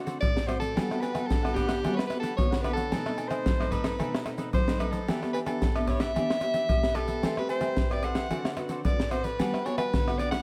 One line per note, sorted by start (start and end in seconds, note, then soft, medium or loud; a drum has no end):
0.00 0.20 D3 medium
0.00 0.30 A3 medium
0.00 0.30 C4 medium
0.00 0.30 F#4 medium
0.06 0.16 F#4 medium
0.06 0.16 A4 medium
0.06 0.17 C5 medium
0.06 0.17 D5 medium
0.06 snare soft
0.06 pandeiro medium
0.06 shaker medium
0.20 0.74 A2 medium
0.20 0.49 D5 loud
0.20 snare soft
0.20 pandeiro medium
0.20 high agogo medium
0.20 shaker medium
0.20 surdo loud
0.35 0.46 A4 soft
0.35 0.47 C5 soft
0.35 0.48 D5 medium
0.35 snare medium
0.35 pandeiro soft
0.35 shaker soft
0.46 0.74 A3 medium
0.46 0.74 C4 medium
0.46 0.60 F#4 medium
0.46 0.74 F#4 medium
0.46 0.60 A4 medium
0.46 0.59 C5 loud
0.46 0.59 C5 medium
0.46 0.58 D5 medium
0.46 snare soft
0.46 pandeiro medium
0.46 tamborim medium
0.46 high agogo medium
0.59 1.03 A4 loud
0.59 0.74 A4 soft
0.59 0.74 C5 soft
0.59 0.73 D5 medium
0.59 snare soft
0.59 pandeiro medium
0.59 shaker medium
0.75 1.27 G3 medium
0.75 0.85 B3 medium
0.75 0.99 D4 medium
0.75 0.85 F#4 medium
0.75 1.00 G4 medium
0.75 0.85 A4 medium
0.75 1.01 B4 medium
0.75 1.01 F#5 medium
0.75 snare medium
0.75 pandeiro medium
0.75 low agogo medium
0.75 shaker medium
0.75 surdo medium
0.91 1.13 B3 medium
0.91 1.13 F#4 medium
0.91 1.13 A4 medium
0.91 snare soft
0.91 pandeiro soft
0.91 tamborim medium
0.91 shaker soft
1.01 1.14 D4 medium
1.01 1.13 G4 medium
1.01 1.29 B4 loud
1.01 1.12 B4 medium
1.01 1.11 F#5 medium
1.01 snare soft
1.01 pandeiro medium
1.01 low agogo medium
1.12 1.39 B3 medium
1.12 1.41 G4 soft
1.12 1.41 B4 soft
1.12 1.40 F#5 soft
1.12 snare soft
1.12 pandeiro medium
1.12 tamborim medium
1.12 low agogo medium
1.12 shaker medium
1.17 1.40 F#4 medium
1.17 1.40 A4 medium
1.27 1.82 D3 medium
1.27 1.55 A4 loud
1.27 snare medium
1.27 pandeiro medium
1.27 shaker medium
1.27 surdo loud
1.43 1.81 B3 medium
1.43 1.82 F#4 medium
1.43 1.54 G4 soft
1.43 1.55 B4 soft
1.43 1.55 F#5 medium
1.43 snare soft
1.43 pandeiro soft
1.43 tamborim medium
1.43 high agogo medium
1.43 shaker soft
1.47 1.82 A4 medium
1.54 1.66 D4 medium
1.54 1.93 G4 loud
1.54 1.66 G4 medium
1.54 1.66 B4 medium
1.54 1.67 F#5 medium
1.54 snare soft
1.54 pandeiro medium
1.54 high agogo medium
1.54 surdo medium
1.67 1.78 D4 medium
1.67 1.78 G4 medium
1.67 1.78 B4 medium
1.67 1.78 F#5 medium
1.67 snare medium
1.67 pandeiro medium
1.67 tamborim medium
1.67 shaker medium
1.83 2.36 G3 medium
1.83 2.01 B3 medium
1.83 2.08 D4 medium
1.83 2.01 F#4 medium
1.83 2.09 G4 medium
1.83 2.01 A4 medium
1.83 2.09 B4 medium
1.83 2.10 F#5 medium
1.83 snare soft
1.83 pandeiro medium
1.83 tamborim medium
1.83 low agogo medium
1.83 shaker medium
1.83 surdo medium
1.93 2.06 B4 medium
1.93 1.98 C#5 medium
1.99 snare medium
1.99 pandeiro soft
1.99 tamborim medium
1.99 shaker soft
2.07 2.21 D4 soft
2.07 2.21 G4 medium
2.07 2.19 B4 medium
2.07 2.21 B4 medium
2.07 snare soft
2.07 pandeiro medium
2.07 tamborim medium
2.12 2.27 B3 medium
2.12 2.27 F#4 medium
2.12 2.28 A4 medium
2.12 2.22 F#5 medium
2.20 2.32 D4 medium
2.20 2.32 G4 medium
2.20 2.35 A4 medium
2.20 2.33 B4 medium
2.20 2.33 F#5 medium
2.20 snare soft
2.20 pandeiro medium
2.20 shaker loud
2.37 2.90 D3 medium
2.37 2.61 B3 medium
2.37 2.62 F#4 medium
2.37 2.62 A4 medium
2.37 2.63 C#5 loud
2.37 snare soft
2.37 pandeiro medium
2.37 high agogo medium
2.37 shaker medium
2.37 surdo loud
2.51 2.62 G4 soft
2.51 2.63 B4 medium
2.51 2.64 F#5 soft
2.51 snare medium
2.51 pandeiro soft
2.51 shaker soft
2.61 2.83 B3 medium
2.61 2.76 D4 medium
2.61 2.76 G4 medium
2.61 2.73 B4 medium
2.61 2.76 B4 medium
2.61 2.74 F#5 medium
2.61 snare soft
2.61 pandeiro medium
2.61 tamborim medium
2.61 high agogo medium
2.65 2.83 F#4 medium
2.65 2.83 A4 medium
2.73 3.30 A4 loud
2.73 2.90 B4 medium
2.73 2.89 F#5 medium
2.73 snare soft
2.73 pandeiro medium
2.73 shaker medium
2.77 2.91 G4 soft
2.91 3.44 B2 medium
2.91 3.02 A3 medium
2.91 3.02 C4 medium
2.91 3.16 D#4 medium
2.91 3.02 D#4 medium
2.91 3.17 A4 medium
2.91 3.18 B4 medium
2.91 3.18 D#5 medium
2.91 snare medium
2.91 pandeiro medium
2.91 low agogo medium
2.91 shaker medium
2.91 surdo medium
3.06 3.57 A3 medium
3.06 3.57 C4 medium
3.06 3.57 D#4 medium
3.06 snare soft
3.06 pandeiro soft
3.06 tamborim medium
3.06 shaker soft
3.17 3.31 D#4 medium
3.17 3.31 A4 medium
3.17 3.30 B4 medium
3.17 3.29 D#5 medium
3.17 snare soft
3.17 pandeiro medium
3.17 low agogo medium
3.28 3.58 B4 soft
3.28 3.73 C5 loud
3.28 3.58 D#5 medium
3.28 snare soft
3.28 pandeiro medium
3.28 tamborim medium
3.28 low agogo medium
3.28 shaker medium
3.32 3.58 A4 soft
3.46 3.98 F#3 medium
3.46 snare medium
3.46 pandeiro medium
3.46 shaker medium
3.46 surdo loud
3.59 3.97 A3 medium
3.59 3.97 C4 medium
3.59 3.97 D#4 medium
3.59 3.70 A4 soft
3.59 3.71 B4 soft
3.59 3.71 D#5 medium
3.59 snare soft
3.59 pandeiro soft
3.59 tamborim medium
3.59 high agogo medium
3.59 shaker soft
3.71 3.82 D#4 medium
3.71 3.83 A4 medium
3.71 4.26 B4 medium
3.71 3.83 B4 medium
3.71 3.84 D#5 medium
3.71 snare soft
3.71 pandeiro medium
3.71 high agogo loud
3.71 shaker medium
3.71 surdo medium
3.84 3.94 D#4 medium
3.84 3.94 A4 medium
3.84 3.95 B4 medium
3.84 3.95 D#5 medium
3.84 snare medium
3.84 pandeiro medium
3.84 tamborim medium
3.84 shaker medium
3.99 4.52 B2 medium
3.99 4.16 A3 medium
3.99 4.16 C4 medium
3.99 4.24 D#4 medium
3.99 4.17 D#4 medium
3.99 4.24 A4 medium
3.99 4.25 B4 medium
3.99 4.26 D#5 medium
3.99 snare soft
3.99 pandeiro medium
3.99 tamborim medium
3.99 low agogo medium
3.99 shaker medium
3.99 surdo medium
4.14 snare loud
4.14 pandeiro soft
4.14 tamborim medium
4.14 shaker soft
4.25 4.63 A3 medium
4.25 4.64 C4 medium
4.25 4.36 D#4 soft
4.25 4.64 D#4 medium
4.25 4.37 A4 medium
4.25 4.38 B4 medium
4.25 4.38 D#5 medium
4.25 snare soft
4.25 pandeiro medium
4.25 tamborim medium
4.25 shaker medium
4.38 4.48 D#4 medium
4.38 4.49 A4 medium
4.38 4.49 B4 medium
4.38 4.49 D#5 medium
4.38 snare soft
4.38 pandeiro medium
4.38 shaker medium
4.53 5.06 F#3 medium
4.53 4.81 C5 loud
4.53 snare soft
4.53 pandeiro medium
4.53 high agogo medium
4.53 shaker medium
4.53 surdo loud
4.68 4.77 A3 medium
4.68 4.77 C4 medium
4.68 4.77 D#4 medium
4.68 4.79 A4 soft
4.68 4.79 B4 soft
4.68 4.80 D#5 soft
4.68 snare medium
4.68 pandeiro soft
4.68 shaker soft
4.79 4.98 A3 medium
4.79 4.99 C4 medium
4.79 4.93 D#4 medium
4.79 4.99 D#4 medium
4.79 4.92 A4 medium
4.79 4.93 B4 medium
4.79 4.91 B4 medium
4.79 4.91 D#5 medium
4.79 snare soft
4.79 pandeiro medium
4.79 tamborim medium
4.79 high agogo medium
4.79 shaker medium
4.92 5.33 A4 medium
4.92 5.07 A4 soft
4.92 5.06 B4 soft
4.92 5.06 D#5 medium
4.92 snare soft
4.92 pandeiro medium
4.92 shaker medium
5.07 5.59 E3 medium
5.07 5.17 B3 medium
5.07 5.32 D4 medium
5.07 5.18 D4 medium
5.07 5.33 G4 medium
5.07 5.18 G4 medium
5.07 5.33 B4 medium
5.07 5.34 E5 medium
5.07 snare medium
5.07 pandeiro medium
5.07 low agogo medium
5.07 shaker medium
5.07 surdo medium
5.22 5.45 B3 medium
5.22 5.45 D4 medium
5.22 5.45 G4 medium
5.22 snare soft
5.22 pandeiro soft
5.22 tamborim medium
5.22 shaker soft
5.33 5.46 D4 medium
5.33 5.46 G4 soft
5.33 5.40 B4 medium
5.33 5.45 B4 medium
5.33 5.45 E5 medium
5.33 snare soft
5.33 pandeiro medium
5.33 low agogo medium
5.33 shaker medium
5.46 5.70 B3 medium
5.46 5.70 D4 medium
5.46 5.70 G4 medium
5.46 5.74 G4 soft
5.46 5.89 A4 medium
5.46 5.74 B4 soft
5.46 5.73 E5 soft
5.46 snare soft
5.46 pandeiro medium
5.46 tamborim medium
5.46 low agogo medium
5.46 shaker medium
5.62 6.13 B2 medium
5.62 snare medium
5.62 pandeiro medium
5.62 shaker medium
5.62 surdo loud
5.75 6.12 B3 medium
5.75 6.12 D4 medium
5.75 6.12 G4 medium
5.75 5.87 G4 soft
5.75 5.87 B4 soft
5.75 5.88 E5 medium
5.75 snare soft
5.75 pandeiro soft
5.75 tamborim medium
5.75 high agogo medium
5.75 shaker soft
5.87 5.98 D4 medium
5.87 5.99 G4 medium
5.87 5.99 B4 medium
5.87 6.02 C#5 loud
5.87 5.99 E5 medium
5.87 snare soft
5.87 pandeiro medium
5.87 high agogo medium
5.87 surdo medium
5.99 6.10 D4 medium
5.99 6.10 G4 medium
5.99 6.10 B4 medium
5.99 6.97 E5 loud
5.99 6.11 E5 medium
5.99 snare medium
5.99 pandeiro medium
5.99 tamborim medium
5.99 shaker medium
6.14 6.67 E3 medium
6.14 6.32 B3 medium
6.14 6.40 D4 medium
6.14 6.32 D4 medium
6.14 6.41 G4 medium
6.14 6.32 G4 medium
6.14 6.41 B4 medium
6.14 6.42 E5 medium
6.14 snare soft
6.14 pandeiro medium
6.14 tamborim medium
6.14 low agogo medium
6.14 shaker medium
6.14 surdo medium
6.30 snare medium
6.30 pandeiro soft
6.30 tamborim medium
6.30 shaker soft
6.41 6.65 B3 medium
6.41 6.52 D4 soft
6.41 6.65 D4 medium
6.41 6.53 G4 medium
6.41 6.65 G4 medium
6.41 6.53 B4 medium
6.41 6.54 E5 medium
6.41 snare soft
6.41 pandeiro medium
6.41 tamborim medium
6.54 6.64 D4 medium
6.54 6.64 G4 medium
6.54 6.65 B4 medium
6.54 6.65 E5 medium
6.54 snare soft
6.54 pandeiro medium
6.54 shaker medium
6.69 7.22 B2 medium
6.69 6.93 B3 medium
6.69 6.93 D4 medium
6.69 6.94 G4 medium
6.69 snare soft
6.69 pandeiro medium
6.69 high agogo loud
6.69 shaker medium
6.69 surdo loud
6.83 6.95 G4 soft
6.83 6.95 B4 soft
6.83 6.96 E5 soft
6.83 snare medium
6.83 pandeiro soft
6.83 shaker soft
6.95 7.21 B3 medium
6.95 7.09 D4 medium
6.95 7.21 D4 medium
6.95 7.09 G4 medium
6.95 7.21 G4 medium
6.95 7.37 A4 loud
6.95 7.08 B4 medium
6.95 7.07 E5 medium
6.95 snare soft
6.95 pandeiro medium
6.95 tamborim loud
6.95 high agogo loud
7.08 7.23 G4 soft
7.08 7.22 B4 soft
7.08 7.22 E5 medium
7.08 snare soft
7.08 pandeiro medium
7.08 shaker medium
7.23 7.75 A3 medium
7.23 7.33 C4 medium
7.23 7.33 G4 medium
7.23 7.49 A4 medium
7.23 7.33 B4 medium
7.23 7.49 C5 medium
7.23 7.50 E5 medium
7.23 7.51 G5 medium
7.23 snare medium
7.23 pandeiro medium
7.23 low agogo medium
7.23 shaker medium
7.23 surdo medium
7.37 7.60 C4 medium
7.37 7.61 G4 medium
7.37 7.49 B4 loud
7.37 7.61 B4 medium
7.37 snare soft
7.37 pandeiro soft
7.37 tamborim medium
7.37 shaker soft
7.49 7.63 A4 medium
7.49 7.95 C5 loud
7.49 7.63 C5 medium
7.49 7.62 E5 medium
7.49 7.61 G5 medium
7.49 snare soft
7.49 pandeiro medium
7.49 low agogo medium
7.49 shaker medium
7.61 7.86 C4 medium
7.61 7.86 G4 medium
7.61 7.86 B4 medium
7.61 7.90 C5 soft
7.61 7.90 E5 soft
7.61 7.89 G5 medium
7.61 snare soft
7.61 pandeiro medium
7.61 tamborim medium
7.61 low agogo medium
7.61 shaker medium
7.77 8.29 E3 medium
7.77 snare medium
7.77 pandeiro medium
7.77 shaker medium
7.77 surdo loud
7.91 8.27 C4 medium
7.91 8.27 G4 medium
7.91 8.28 B4 medium
7.91 8.03 C5 soft
7.91 8.05 D5 medium
7.91 8.04 E5 soft
7.91 8.04 G5 medium
7.91 snare soft
7.91 pandeiro soft
7.91 tamborim medium
7.91 high agogo medium
7.91 shaker soft
8.03 8.14 A4 medium
8.03 8.15 C5 medium
8.03 8.15 E5 medium
8.03 8.58 F#5 loud
8.03 8.15 G5 medium
8.03 snare soft
8.03 pandeiro medium
8.03 high agogo medium
8.15 8.26 A4 medium
8.15 8.26 C5 medium
8.15 8.26 E5 medium
8.15 8.27 G5 medium
8.15 snare medium
8.15 pandeiro medium
8.15 tamborim medium
8.15 shaker medium
8.29 8.82 D3 medium
8.29 8.47 C4 medium
8.29 8.47 F#4 medium
8.29 8.56 F#4 medium
8.29 8.56 A4 medium
8.29 8.47 B4 medium
8.29 8.57 C5 medium
8.29 8.58 D5 medium
8.29 snare soft
8.29 pandeiro medium
8.29 tamborim medium
8.29 low agogo medium
8.29 shaker medium
8.29 surdo medium
8.45 snare medium
8.45 pandeiro soft
8.45 tamborim medium
8.45 shaker soft
8.57 8.80 C4 medium
8.57 8.68 F#4 soft
8.57 8.81 F#4 medium
8.57 8.68 A4 medium
8.57 8.81 B4 medium
8.57 8.69 C5 medium
8.57 8.69 D5 medium
8.57 snare soft
8.57 pandeiro medium
8.57 tamborim medium
8.57 shaker medium
8.69 8.80 F#4 medium
8.69 8.80 A4 medium
8.69 8.80 C5 medium
8.69 8.80 D5 medium
8.69 snare soft
8.69 pandeiro medium
8.69 shaker loud
8.84 9.36 A2 medium
8.84 9.08 C4 medium
8.84 9.08 F#4 medium
8.84 9.08 B4 medium
8.84 9.13 D5 loud
8.84 snare soft
8.84 pandeiro loud
8.84 high agogo loud
8.84 shaker medium
8.84 surdo loud
8.99 9.10 A4 soft
8.99 9.10 C5 soft
8.99 9.11 D5 soft
8.99 snare medium
8.99 pandeiro soft
8.99 shaker soft
9.10 9.30 C4 medium
9.10 9.24 F#4 medium
9.10 9.30 F#4 medium
9.10 9.24 A4 medium
9.10 9.30 B4 medium
9.10 9.25 C5 loud
9.10 9.24 C5 medium
9.10 9.22 D5 medium
9.10 snare soft
9.10 pandeiro medium
9.10 tamborim medium
9.10 high agogo medium
9.23 9.38 A4 soft
9.23 9.67 B4 loud
9.23 9.38 C5 soft
9.23 9.37 D5 medium
9.23 snare soft
9.23 pandeiro medium
9.23 shaker medium
9.38 9.90 G3 medium
9.38 9.55 B3 medium
9.38 9.63 D4 medium
9.38 9.55 F#4 medium
9.38 9.64 G4 medium
9.38 9.56 A4 medium
9.38 9.65 B4 medium
9.38 9.65 F#5 medium
9.38 snare medium
9.38 pandeiro medium
9.38 low agogo medium
9.38 shaker medium
9.38 surdo medium
9.54 snare soft
9.54 pandeiro soft
9.54 tamborim medium
9.54 shaker soft
9.65 10.02 B3 medium
9.65 9.78 D4 medium
9.65 10.02 F#4 medium
9.65 9.78 G4 medium
9.65 10.02 A4 medium
9.65 9.78 B4 medium
9.65 9.77 C#5 loud
9.65 9.77 F#5 medium
9.65 snare soft
9.65 pandeiro medium
9.65 low agogo medium
9.78 10.06 G4 soft
9.78 10.20 B4 loud
9.78 10.05 B4 soft
9.78 10.05 F#5 soft
9.78 snare soft
9.78 pandeiro medium
9.78 tamborim medium
9.78 low agogo loud
9.78 shaker medium
9.93 10.42 D3 medium
9.93 snare medium
9.93 pandeiro medium
9.93 shaker medium
9.93 surdo loud
10.07 10.31 B3 medium
10.07 10.31 F#4 medium
10.07 10.18 G4 soft
10.07 10.31 A4 medium
10.07 10.19 B4 soft
10.07 10.20 F#5 medium
10.07 snare soft
10.07 pandeiro soft
10.07 tamborim medium
10.07 high agogo medium
10.07 shaker soft
10.18 10.30 D4 medium
10.18 10.31 G4 medium
10.18 10.31 B4 medium
10.18 10.30 D5 loud
10.18 10.32 F#5 medium
10.18 snare soft
10.18 pandeiro medium
10.18 high agogo medium
10.18 shaker medium
10.31 10.42 B3 medium
10.31 10.42 D4 medium
10.31 10.42 F#4 medium
10.31 10.42 G4 medium
10.31 10.42 A4 medium
10.31 10.42 B4 medium
10.31 10.42 F#5 loud
10.31 snare medium
10.31 pandeiro medium
10.31 tamborim medium
10.31 shaker medium